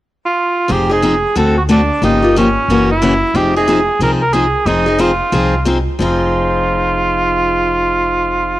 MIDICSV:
0, 0, Header, 1, 4, 480
1, 0, Start_track
1, 0, Key_signature, -4, "minor"
1, 0, Tempo, 332226
1, 994, Time_signature, 4, 2, 24, 8
1, 12421, End_track
2, 0, Start_track
2, 0, Title_t, "Cor anglais"
2, 0, Program_c, 0, 69
2, 365, Note_on_c, 0, 65, 75
2, 1041, Note_on_c, 0, 67, 75
2, 1063, Note_off_c, 0, 65, 0
2, 1311, Note_off_c, 0, 67, 0
2, 1341, Note_on_c, 0, 68, 71
2, 1935, Note_off_c, 0, 68, 0
2, 1991, Note_on_c, 0, 69, 77
2, 2246, Note_off_c, 0, 69, 0
2, 2283, Note_on_c, 0, 66, 71
2, 2358, Note_off_c, 0, 66, 0
2, 2471, Note_on_c, 0, 62, 71
2, 2898, Note_off_c, 0, 62, 0
2, 2944, Note_on_c, 0, 63, 74
2, 3373, Note_off_c, 0, 63, 0
2, 3439, Note_on_c, 0, 61, 73
2, 4132, Note_off_c, 0, 61, 0
2, 4206, Note_on_c, 0, 64, 85
2, 4854, Note_on_c, 0, 67, 87
2, 4876, Note_off_c, 0, 64, 0
2, 5130, Note_off_c, 0, 67, 0
2, 5151, Note_on_c, 0, 68, 84
2, 5751, Note_off_c, 0, 68, 0
2, 5822, Note_on_c, 0, 70, 83
2, 5944, Note_off_c, 0, 70, 0
2, 6084, Note_on_c, 0, 70, 86
2, 6260, Note_on_c, 0, 68, 90
2, 6281, Note_off_c, 0, 70, 0
2, 6738, Note_on_c, 0, 63, 83
2, 6759, Note_off_c, 0, 68, 0
2, 7233, Note_on_c, 0, 65, 73
2, 7255, Note_off_c, 0, 63, 0
2, 8185, Note_off_c, 0, 65, 0
2, 8693, Note_on_c, 0, 65, 78
2, 12421, Note_off_c, 0, 65, 0
2, 12421, End_track
3, 0, Start_track
3, 0, Title_t, "Steel-string acoustic guitar"
3, 0, Program_c, 1, 25
3, 985, Note_on_c, 1, 53, 52
3, 1000, Note_on_c, 1, 60, 57
3, 1001, Note_on_c, 1, 63, 60
3, 1010, Note_on_c, 1, 68, 60
3, 1271, Note_off_c, 1, 53, 0
3, 1276, Note_off_c, 1, 68, 0
3, 1279, Note_off_c, 1, 60, 0
3, 1279, Note_off_c, 1, 63, 0
3, 1293, Note_on_c, 1, 68, 45
3, 1316, Note_on_c, 1, 63, 42
3, 1320, Note_on_c, 1, 60, 38
3, 1469, Note_off_c, 1, 68, 0
3, 1472, Note_off_c, 1, 60, 0
3, 1477, Note_off_c, 1, 63, 0
3, 1480, Note_on_c, 1, 53, 68
3, 1489, Note_on_c, 1, 60, 65
3, 1494, Note_on_c, 1, 63, 78
3, 1495, Note_on_c, 1, 68, 71
3, 1636, Note_off_c, 1, 53, 0
3, 1641, Note_off_c, 1, 60, 0
3, 1643, Note_off_c, 1, 63, 0
3, 1643, Note_off_c, 1, 68, 0
3, 1957, Note_on_c, 1, 50, 63
3, 1966, Note_on_c, 1, 57, 55
3, 1966, Note_on_c, 1, 66, 63
3, 1972, Note_on_c, 1, 60, 63
3, 1978, Note_on_c, 1, 69, 66
3, 2253, Note_off_c, 1, 50, 0
3, 2257, Note_off_c, 1, 57, 0
3, 2257, Note_off_c, 1, 66, 0
3, 2260, Note_off_c, 1, 60, 0
3, 2263, Note_off_c, 1, 69, 0
3, 2437, Note_on_c, 1, 50, 67
3, 2445, Note_on_c, 1, 57, 81
3, 2446, Note_on_c, 1, 60, 71
3, 2459, Note_on_c, 1, 66, 75
3, 2462, Note_on_c, 1, 69, 73
3, 2593, Note_off_c, 1, 50, 0
3, 2597, Note_off_c, 1, 57, 0
3, 2598, Note_off_c, 1, 60, 0
3, 2604, Note_off_c, 1, 66, 0
3, 2606, Note_off_c, 1, 69, 0
3, 2914, Note_on_c, 1, 49, 51
3, 2927, Note_on_c, 1, 53, 50
3, 2934, Note_on_c, 1, 58, 53
3, 2935, Note_on_c, 1, 65, 58
3, 2939, Note_on_c, 1, 67, 67
3, 3193, Note_off_c, 1, 49, 0
3, 3195, Note_off_c, 1, 67, 0
3, 3199, Note_off_c, 1, 53, 0
3, 3203, Note_off_c, 1, 58, 0
3, 3203, Note_off_c, 1, 65, 0
3, 3212, Note_on_c, 1, 67, 49
3, 3232, Note_on_c, 1, 65, 47
3, 3243, Note_on_c, 1, 58, 40
3, 3385, Note_off_c, 1, 67, 0
3, 3395, Note_off_c, 1, 65, 0
3, 3401, Note_off_c, 1, 58, 0
3, 3413, Note_on_c, 1, 49, 70
3, 3415, Note_on_c, 1, 53, 73
3, 3427, Note_on_c, 1, 58, 72
3, 3430, Note_on_c, 1, 65, 77
3, 3430, Note_on_c, 1, 67, 76
3, 3559, Note_off_c, 1, 49, 0
3, 3560, Note_off_c, 1, 53, 0
3, 3566, Note_off_c, 1, 58, 0
3, 3568, Note_off_c, 1, 65, 0
3, 3568, Note_off_c, 1, 67, 0
3, 3898, Note_on_c, 1, 49, 62
3, 3905, Note_on_c, 1, 52, 64
3, 3907, Note_on_c, 1, 58, 65
3, 3915, Note_on_c, 1, 61, 66
3, 3916, Note_on_c, 1, 66, 65
3, 4179, Note_off_c, 1, 49, 0
3, 4182, Note_off_c, 1, 52, 0
3, 4184, Note_off_c, 1, 58, 0
3, 4187, Note_off_c, 1, 61, 0
3, 4188, Note_off_c, 1, 66, 0
3, 4360, Note_on_c, 1, 49, 79
3, 4368, Note_on_c, 1, 58, 73
3, 4369, Note_on_c, 1, 52, 68
3, 4382, Note_on_c, 1, 61, 78
3, 4382, Note_on_c, 1, 66, 83
3, 4510, Note_off_c, 1, 49, 0
3, 4514, Note_off_c, 1, 58, 0
3, 4515, Note_off_c, 1, 52, 0
3, 4521, Note_off_c, 1, 61, 0
3, 4522, Note_off_c, 1, 66, 0
3, 4835, Note_on_c, 1, 60, 56
3, 4836, Note_on_c, 1, 53, 56
3, 4846, Note_on_c, 1, 68, 54
3, 4848, Note_on_c, 1, 63, 64
3, 5109, Note_off_c, 1, 53, 0
3, 5109, Note_off_c, 1, 60, 0
3, 5114, Note_off_c, 1, 68, 0
3, 5115, Note_off_c, 1, 63, 0
3, 5149, Note_on_c, 1, 68, 55
3, 5156, Note_on_c, 1, 63, 48
3, 5175, Note_on_c, 1, 60, 40
3, 5298, Note_off_c, 1, 60, 0
3, 5309, Note_off_c, 1, 68, 0
3, 5311, Note_on_c, 1, 53, 71
3, 5313, Note_off_c, 1, 63, 0
3, 5315, Note_on_c, 1, 60, 69
3, 5328, Note_on_c, 1, 68, 73
3, 5329, Note_on_c, 1, 63, 73
3, 5464, Note_off_c, 1, 53, 0
3, 5466, Note_off_c, 1, 60, 0
3, 5472, Note_off_c, 1, 68, 0
3, 5473, Note_off_c, 1, 63, 0
3, 5787, Note_on_c, 1, 53, 56
3, 5793, Note_on_c, 1, 60, 61
3, 5801, Note_on_c, 1, 63, 67
3, 5811, Note_on_c, 1, 68, 65
3, 6079, Note_off_c, 1, 53, 0
3, 6083, Note_off_c, 1, 60, 0
3, 6087, Note_off_c, 1, 63, 0
3, 6092, Note_off_c, 1, 68, 0
3, 6257, Note_on_c, 1, 53, 70
3, 6263, Note_on_c, 1, 60, 72
3, 6274, Note_on_c, 1, 68, 71
3, 6276, Note_on_c, 1, 63, 71
3, 6415, Note_off_c, 1, 53, 0
3, 6419, Note_off_c, 1, 60, 0
3, 6424, Note_off_c, 1, 68, 0
3, 6425, Note_off_c, 1, 63, 0
3, 6735, Note_on_c, 1, 53, 50
3, 6740, Note_on_c, 1, 60, 53
3, 6751, Note_on_c, 1, 63, 63
3, 6752, Note_on_c, 1, 68, 58
3, 7003, Note_off_c, 1, 68, 0
3, 7016, Note_off_c, 1, 53, 0
3, 7019, Note_off_c, 1, 60, 0
3, 7021, Note_on_c, 1, 68, 48
3, 7024, Note_off_c, 1, 63, 0
3, 7045, Note_on_c, 1, 63, 44
3, 7050, Note_on_c, 1, 60, 40
3, 7195, Note_off_c, 1, 60, 0
3, 7196, Note_off_c, 1, 63, 0
3, 7198, Note_off_c, 1, 68, 0
3, 7201, Note_on_c, 1, 53, 71
3, 7212, Note_on_c, 1, 60, 75
3, 7214, Note_on_c, 1, 63, 77
3, 7216, Note_on_c, 1, 68, 75
3, 7367, Note_off_c, 1, 53, 0
3, 7373, Note_off_c, 1, 60, 0
3, 7374, Note_off_c, 1, 63, 0
3, 7375, Note_off_c, 1, 68, 0
3, 7687, Note_on_c, 1, 53, 61
3, 7693, Note_on_c, 1, 60, 59
3, 7695, Note_on_c, 1, 63, 65
3, 7708, Note_on_c, 1, 68, 68
3, 7990, Note_off_c, 1, 53, 0
3, 7993, Note_off_c, 1, 60, 0
3, 7994, Note_off_c, 1, 63, 0
3, 8000, Note_off_c, 1, 68, 0
3, 8167, Note_on_c, 1, 53, 68
3, 8178, Note_on_c, 1, 60, 68
3, 8183, Note_on_c, 1, 68, 71
3, 8186, Note_on_c, 1, 63, 76
3, 8331, Note_off_c, 1, 53, 0
3, 8336, Note_off_c, 1, 60, 0
3, 8339, Note_off_c, 1, 68, 0
3, 8340, Note_off_c, 1, 63, 0
3, 8649, Note_on_c, 1, 53, 64
3, 8673, Note_on_c, 1, 60, 71
3, 8690, Note_on_c, 1, 63, 71
3, 8699, Note_on_c, 1, 68, 74
3, 12421, Note_off_c, 1, 53, 0
3, 12421, Note_off_c, 1, 60, 0
3, 12421, Note_off_c, 1, 63, 0
3, 12421, Note_off_c, 1, 68, 0
3, 12421, End_track
4, 0, Start_track
4, 0, Title_t, "Upright bass"
4, 0, Program_c, 2, 32
4, 1004, Note_on_c, 2, 29, 71
4, 1767, Note_off_c, 2, 29, 0
4, 1962, Note_on_c, 2, 38, 68
4, 2724, Note_off_c, 2, 38, 0
4, 2912, Note_on_c, 2, 31, 70
4, 3676, Note_off_c, 2, 31, 0
4, 3876, Note_on_c, 2, 30, 75
4, 4636, Note_off_c, 2, 30, 0
4, 4824, Note_on_c, 2, 29, 73
4, 5588, Note_off_c, 2, 29, 0
4, 5770, Note_on_c, 2, 36, 69
4, 6539, Note_off_c, 2, 36, 0
4, 6724, Note_on_c, 2, 29, 71
4, 7496, Note_off_c, 2, 29, 0
4, 7687, Note_on_c, 2, 36, 66
4, 8460, Note_off_c, 2, 36, 0
4, 8656, Note_on_c, 2, 29, 76
4, 12421, Note_off_c, 2, 29, 0
4, 12421, End_track
0, 0, End_of_file